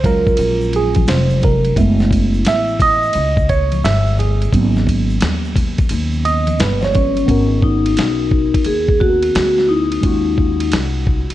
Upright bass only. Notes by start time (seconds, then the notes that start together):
Already playing: C#2
0.39 A#1
1.08 F1
1.77 F#1
2.46 A1
3.15 C#2
3.84 G1
4.53 G#1
5.22 D#2
5.91 D#2
6.60 G1
7.29 G#1
7.98 B1
8.55 muted upright bass stroke
8.66 D#2
9.35 D2
10.04 D#2
10.73 C2
11.30 muted upright bass stroke